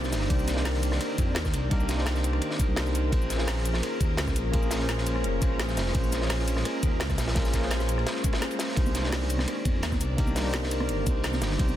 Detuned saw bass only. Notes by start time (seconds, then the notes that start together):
Already playing: C2
0.12 G1
0.30 C2
1.18 F2
1.36 D#2
1.53 C2
1.71 C2
2.68 C2
3.12 A#1
4.00 D#2
4.18 C#2
4.36 A#1
4.53 A#1
5.24 F1
5.42 A#1
5.77 F1
5.95 A#1
6.83 D#2
7.01 C#2
7.18 A#1
7.36 A#1
8.24 A#1
8.77 C2
9.65 F2
9.83 D#2
10.01 C2
10.18 C2
10.89 G1
11.06 C2
11.41 G1
11.59 C2